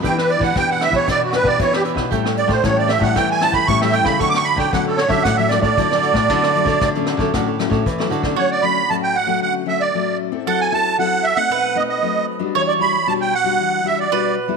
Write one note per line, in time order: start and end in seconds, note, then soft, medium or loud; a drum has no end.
0.02 0.53 E3 medium
0.02 0.38 E3 medium
0.02 0.52 B3 soft
0.02 0.15 D4 medium
0.02 0.52 D4 medium
0.02 0.16 G4 medium
0.02 0.52 G4 medium
0.02 0.16 B4 medium
0.02 0.16 E5 medium
0.02 0.17 G5 medium
0.02 kick medium
0.02 closed hi-hat medium
0.17 0.42 G4 soft
0.17 0.30 B4 medium
0.17 0.40 B4 soft
0.17 0.40 E5 soft
0.17 cross-stick medium
0.30 0.43 D5 medium
0.30 closed hi-hat soft
0.40 0.52 E3 medium
0.40 0.68 G4 medium
0.40 0.68 B4 medium
0.40 0.67 E5 medium
0.40 0.56 F#5 medium
0.40 kick medium
0.56 1.06 B2 medium
0.56 0.89 E3 medium
0.56 0.91 B3 soft
0.56 0.91 D4 medium
0.56 0.91 G4 medium
0.56 0.70 G5 loud
0.56 kick medium
0.56 cross-stick medium
0.56 closed hi-hat medium
0.69 0.80 G4 soft
0.69 0.80 B4 soft
0.69 0.81 E5 soft
0.69 0.83 F#5 medium
0.80 0.94 D4 medium
0.80 0.93 G4 soft
0.80 0.92 B4 medium
0.80 0.91 E5 medium
0.80 0.95 E5 medium
0.80 cross-stick medium
0.80 closed hi-hat medium
0.91 1.04 E3 loud
0.91 1.30 B3 medium
0.91 1.30 D4 medium
0.91 1.07 G4 medium
0.91 1.30 G4 medium
0.91 1.06 B4 medium
0.91 1.06 E5 medium
0.91 kick medium
0.96 1.08 C#5 medium
1.07 1.41 B2 medium
1.07 1.58 E3 medium
1.07 1.20 D4 medium
1.07 1.20 G4 medium
1.07 1.21 B4 medium
1.07 1.22 D5 loud
1.07 1.20 E5 medium
1.07 kick medium
1.07 cross-stick medium
1.07 closed hi-hat medium
1.21 1.35 F#4 medium
1.21 1.33 G4 soft
1.21 1.34 B4 soft
1.21 1.33 E5 soft
1.33 1.56 B3 medium
1.33 1.56 D4 medium
1.33 1.56 G4 medium
1.33 1.48 B4 medium
1.33 muted cavaquinho stroke soft
1.33 cross-stick medium
1.33 closed hi-hat medium
1.43 1.56 B2 medium
1.43 1.72 G4 medium
1.43 1.72 B4 medium
1.43 1.71 E5 medium
1.43 kick medium
1.47 1.60 D5 medium
1.59 2.10 B2 medium
1.59 1.94 E3 loud
1.59 2.08 B3 medium
1.59 2.09 D4 medium
1.59 2.09 G4 medium
1.59 1.74 C#5 medium
1.59 kick medium
1.59 closed hi-hat medium
1.73 1.82 G4 medium
1.73 1.83 G4 soft
1.73 1.84 B4 soft
1.73 1.84 E5 soft
1.73 cross-stick medium
1.83 1.97 D4 medium
1.83 1.97 G4 medium
1.83 1.96 B4 medium
1.83 1.95 E5 medium
1.83 closed hi-hat medium
1.95 2.12 B2 medium
1.95 2.09 G4 soft
1.95 2.10 B4 medium
1.95 2.10 E5 soft
1.95 kick medium
1.95 cross-stick medium
1.95 closed hi-hat soft
2.11 2.46 A2 loud
2.11 2.62 A2 medium
2.11 2.46 G3 medium
2.11 2.46 C#4 medium
2.11 2.47 E4 medium
2.11 2.24 G4 medium
2.11 2.24 A4 medium
2.11 2.24 C#5 medium
2.11 2.23 G5 medium
2.11 kick medium
2.11 closed hi-hat medium
2.24 2.48 A4 soft
2.24 2.48 C#5 soft
2.24 2.46 G5 soft
2.24 cross-stick medium
2.37 2.51 D5 medium
2.37 closed hi-hat medium
2.48 2.60 A2 medium
2.48 2.76 A4 medium
2.48 2.64 C5 medium
2.48 2.75 C#5 medium
2.48 2.75 G5 medium
2.48 kick medium
2.48 closed hi-hat soft
2.64 2.98 A2 medium
2.64 3.14 E3 medium
2.64 2.89 G3 medium
2.64 2.89 C#4 medium
2.64 2.90 E4 medium
2.64 2.78 C#5 medium
2.64 kick medium
2.64 cross-stick medium
2.64 closed hi-hat medium
2.76 2.87 A4 soft
2.76 2.87 C#5 soft
2.76 2.91 D5 medium
2.76 2.88 G5 soft
2.76 closed hi-hat soft
2.87 3.01 G4 medium
2.87 3.00 A4 medium
2.87 2.99 C#5 soft
2.87 3.03 E5 medium
2.87 2.98 G5 medium
2.87 cross-stick medium
2.87 closed hi-hat soft
2.99 3.13 A2 loud
2.99 3.38 G3 medium
2.99 3.38 C#4 medium
2.99 3.38 E4 medium
2.99 3.14 A4 medium
2.99 3.14 C#5 medium
2.99 3.16 F#5 medium
2.99 3.14 G5 medium
2.99 kick medium
2.99 closed hi-hat soft
3.15 3.66 A2 medium
3.15 3.50 E3 medium
3.15 3.28 G4 medium
3.15 3.29 A4 medium
3.15 3.28 C#5 medium
3.15 3.29 G5 medium
3.15 3.27 G5 medium
3.15 kick medium
3.15 cross-stick medium
3.15 closed hi-hat medium
3.29 3.39 A4 soft
3.29 3.39 C#5 soft
3.29 3.39 G5 soft
3.29 3.43 G#5 medium
3.40 3.64 G3 medium
3.40 3.64 C#4 medium
3.40 3.65 E4 medium
3.40 3.55 A5 loud
3.40 muted cavaquinho stroke soft
3.40 cross-stick medium
3.40 closed hi-hat medium
3.52 3.65 E3 medium
3.52 3.80 A4 medium
3.52 3.80 C#5 medium
3.52 3.79 G5 medium
3.52 3.67 B5 medium
3.52 kick medium
3.52 closed hi-hat soft
3.67 4.02 A2 loud
3.67 4.18 E3 medium
3.67 3.78 G3 medium
3.67 3.78 C#4 medium
3.67 3.78 E4 medium
3.67 3.81 C#6 loud
3.67 kick medium
3.67 closed hi-hat medium
3.81 4.17 G3 medium
3.81 4.17 C#4 medium
3.81 4.18 E4 medium
3.81 3.91 A4 soft
3.81 3.92 C#5 soft
3.81 3.94 E5 medium
3.81 3.93 G5 medium
3.81 cross-stick medium
3.92 4.06 G4 medium
3.92 4.05 A4 medium
3.92 4.04 C#5 medium
3.92 4.07 G5 medium
3.92 4.03 G5 medium
3.92 closed hi-hat medium
4.04 4.21 C#3 medium
4.04 4.19 A4 soft
4.04 4.19 C#5 soft
4.04 4.18 G5 medium
4.04 4.19 B5 medium
4.04 kick medium
4.04 cross-stick medium
4.04 closed hi-hat soft
4.19 4.70 D3 medium
4.19 4.54 D3 loud
4.19 4.69 F#3 medium
4.19 4.69 A3 medium
4.19 4.69 C#4 medium
4.19 4.32 F#4 medium
4.19 4.33 A4 medium
4.19 4.32 C#5 medium
4.19 4.31 D5 medium
4.19 4.29 C#6 medium
4.19 kick medium
4.19 closed hi-hat medium
4.29 4.56 D5 medium
4.29 4.38 D6 loud
4.34 4.58 A4 soft
4.34 4.57 C#5 soft
4.34 4.46 C#6 loud
4.34 cross-stick medium
4.44 4.58 B5 medium
4.44 closed hi-hat medium
4.56 4.69 D3 medium
4.56 4.85 A4 medium
4.56 4.84 C#5 medium
4.56 4.84 D5 medium
4.56 4.72 G5 medium
4.56 kick medium
4.73 5.23 A2 medium
4.73 5.06 D3 medium
4.73 4.98 F#3 medium
4.73 4.98 A3 medium
4.73 4.98 C#4 medium
4.73 4.86 F#5 medium
4.73 kick medium
4.73 cross-stick medium
4.73 closed hi-hat medium
4.86 4.99 A4 medium
4.86 4.97 A4 soft
4.86 4.97 C#5 soft
4.86 4.98 D5 soft
4.97 5.10 F#4 medium
4.97 5.09 A4 medium
4.97 5.11 C#5 medium
4.97 5.08 C#5 medium
4.97 5.08 D5 medium
4.97 cross-stick medium
4.97 closed hi-hat medium
5.08 5.21 D3 loud
5.08 5.33 F#3 medium
5.08 5.34 A3 medium
5.08 5.34 C#4 medium
5.08 5.23 A4 medium
5.08 5.23 C#5 medium
5.08 5.23 D5 medium
5.08 5.23 E5 medium
5.08 kick medium
5.23 5.59 A2 medium
5.23 5.75 D3 medium
5.23 5.37 F#4 medium
5.23 5.37 A4 medium
5.23 5.37 C#5 medium
5.23 5.36 D5 medium
5.23 5.37 F#5 loud
5.23 kick medium
5.23 cross-stick medium
5.23 closed hi-hat medium
5.37 5.47 F#3 medium
5.37 5.48 A3 medium
5.37 5.48 C#4 medium
5.37 5.49 A4 soft
5.37 5.49 C#5 soft
5.37 5.49 D5 soft
5.37 5.50 E5 medium
5.48 5.66 F#3 medium
5.48 5.67 A3 medium
5.48 5.67 C#4 medium
5.48 5.60 D5 medium
5.48 muted cavaquinho stroke soft
5.48 cross-stick medium
5.48 closed hi-hat medium
5.61 5.74 A2 medium
5.61 5.89 A4 medium
5.61 5.88 C#5 medium
5.61 5.88 D5 medium
5.61 6.89 D5 medium
5.61 kick medium
5.77 6.27 A2 medium
5.77 6.11 D3 loud
5.77 5.86 F#3 medium
5.77 5.86 A3 medium
5.77 5.87 C#4 medium
5.77 kick medium
5.77 closed hi-hat medium
5.91 6.26 F#3 medium
5.91 6.26 A3 medium
5.91 6.02 A4 soft
5.91 6.03 C#5 soft
5.91 6.03 D5 medium
5.91 cross-stick medium
6.03 6.15 F#4 medium
6.03 6.15 A4 medium
6.03 6.14 C#5 medium
6.03 6.14 D5 medium
6.03 closed hi-hat soft
6.13 6.30 A2 medium
6.13 6.29 A4 soft
6.13 6.28 C#5 soft
6.13 kick medium
6.13 cross-stick medium
6.13 closed hi-hat soft
6.29 6.63 D3 loud
6.29 6.79 D3 medium
6.29 6.52 F#3 medium
6.29 6.52 A3 medium
6.29 6.52 C#4 medium
6.29 6.41 F#4 medium
6.29 6.42 A4 medium
6.29 6.42 C#5 medium
6.29 6.41 D5 medium
6.29 kick medium
6.29 closed hi-hat medium
6.42 6.66 A4 soft
6.42 6.66 C#5 soft
6.42 6.64 D5 medium
6.42 cross-stick medium
6.55 6.91 F#3 medium
6.55 6.90 A3 medium
6.55 closed hi-hat medium
6.65 6.78 D3 loud
6.65 6.93 A4 medium
6.65 6.93 C#5 medium
6.65 6.92 D5 medium
6.65 kick medium
6.65 closed hi-hat soft
6.81 7.31 A2 medium
6.81 7.15 D3 loud
6.81 kick medium
6.81 cross-stick medium
6.81 closed hi-hat medium
6.95 7.17 F#3 medium
6.95 7.17 A3 medium
6.95 7.17 C#4 medium
6.95 7.06 A4 soft
6.95 7.06 C#5 soft
6.95 7.06 D5 medium
6.95 closed hi-hat soft
7.06 7.19 F#4 soft
7.06 7.19 A4 medium
7.06 7.19 C#5 medium
7.06 7.18 D5 medium
7.06 cross-stick medium
7.06 closed hi-hat soft
7.17 7.30 D3 loud
7.17 7.29 F#3 medium
7.17 7.29 A3 medium
7.17 7.30 C#4 medium
7.17 7.33 A4 medium
7.17 7.33 C#5 medium
7.17 7.32 D5 medium
7.17 kick medium
7.17 closed hi-hat soft
7.34 7.67 A2 medium
7.34 7.84 D3 medium
7.34 7.50 F#3 medium
7.34 7.50 A3 medium
7.34 7.50 C#4 medium
7.34 7.46 F#4 medium
7.34 7.46 A4 medium
7.34 7.47 C#5 medium
7.34 7.46 D5 medium
7.34 kick medium
7.34 cross-stick medium
7.34 closed hi-hat medium
7.47 7.58 A4 soft
7.47 7.59 C#5 soft
7.47 7.59 D5 medium
7.59 7.84 F#3 medium
7.59 7.84 A3 medium
7.59 7.84 C#4 medium
7.59 muted cavaquinho stroke soft
7.59 cross-stick medium
7.59 closed hi-hat soft
7.70 7.82 A2 medium
7.70 7.97 A4 medium
7.70 7.97 C#5 medium
7.70 7.96 D5 medium
7.70 kick medium
7.70 closed hi-hat soft
7.86 8.36 A2 medium
7.86 8.10 E3 medium
7.86 kick medium
7.86 closed hi-hat medium
7.98 8.34 F#3 medium
7.98 8.34 A3 medium
7.98 8.34 C#4 medium
7.98 8.10 A4 soft
7.98 8.11 C#5 soft
7.98 8.11 D5 medium
7.98 cross-stick medium
8.10 8.35 D3 medium
8.10 8.23 F#4 medium
8.10 8.24 A4 medium
8.10 8.23 C#5 medium
8.10 8.22 D5 medium
8.10 closed hi-hat medium
8.23 8.37 A4 soft
8.23 8.37 C#5 medium
8.23 8.36 D5 medium
8.23 kick medium
8.23 cross-stick medium
8.23 closed hi-hat soft
8.36 8.88 D3 medium
8.36 8.60 F#3 medium
8.36 8.60 A3 medium
8.36 8.60 C#4 medium
8.36 10.42 F#4 medium
8.36 8.50 C#5 medium
8.51 8.65 D5 medium
8.62 8.79 F#3 medium
8.62 8.79 A3 medium
8.62 8.79 C#4 medium
8.62 8.90 B5 medium
8.89 9.39 A2 medium
8.89 9.14 F#3 medium
8.89 9.14 A3 medium
8.89 9.15 C#4 medium
8.89 8.96 A5 loud
9.03 9.17 G5 medium
9.16 9.40 F#5 medium
9.27 9.63 F#3 medium
9.27 9.63 A3 medium
9.27 9.63 C#4 medium
9.41 9.91 D3 medium
9.41 9.54 F#5 medium
9.66 9.89 F#3 medium
9.66 9.89 A3 medium
9.66 9.89 C#4 medium
9.66 9.82 E5 medium
9.81 10.17 D5 medium
9.94 10.44 A2 medium
9.94 10.29 F#3 medium
9.94 10.29 A3 medium
9.94 10.30 C#4 medium
10.32 10.68 C4 medium
10.32 10.68 E4 medium
10.32 10.68 A4 medium
10.46 10.96 F#3 medium
10.46 11.54 A4 medium
10.46 10.60 F#5 medium
10.60 10.73 G#5 medium
10.72 10.94 C4 medium
10.72 10.94 E4 medium
10.72 10.95 A4 medium
10.72 10.97 A5 medium
10.98 11.36 F#3 medium
10.98 11.23 C4 medium
10.98 11.23 E4 medium
10.98 11.24 A4 medium
10.98 11.26 F#5 medium
11.24 11.38 E5 medium
11.36 11.72 A3 medium
11.36 11.72 C4 medium
11.36 11.72 D#4 medium
11.36 11.77 F#5 medium
11.49 12.00 B2 medium
11.49 12.55 B4 medium
11.75 11.98 A3 medium
11.75 11.98 C4 medium
11.75 11.98 D#4 medium
11.75 11.83 D#5 medium
11.89 12.26 D#5 medium
12.02 12.52 F#3 medium
12.02 12.38 A3 medium
12.02 12.38 C4 medium
12.02 12.38 D#4 medium
12.39 12.76 G3 medium
12.39 12.76 D4 medium
12.39 12.76 F#4 medium
12.55 13.05 E3 medium
12.55 14.12 C#5 loud
12.55 12.62 C#5 medium
12.68 12.74 D5 medium
12.79 12.95 G3 medium
12.79 12.96 D4 medium
12.79 12.96 F#4 medium
12.79 13.08 B5 medium
13.07 13.57 B2 medium
13.07 13.32 G3 medium
13.07 13.32 D4 medium
13.07 13.32 F#4 medium
13.07 13.13 A5 loud
13.21 13.34 G5 medium
13.34 13.88 F#5 loud
13.44 13.80 G3 medium
13.44 13.80 D4 medium
13.44 13.81 F#4 medium
13.60 14.09 E3 medium
13.84 14.06 G3 medium
13.84 14.07 D4 medium
13.84 14.07 F#4 medium
13.84 13.99 E5 medium
14.00 14.35 D5 medium
14.11 14.57 B2 medium
14.11 14.36 G3 medium
14.11 14.36 D4 medium
14.11 14.36 F#4 medium
14.11 14.57 B4 medium
14.48 14.57 G3 medium
14.48 14.57 B3 medium
14.48 14.57 E4 medium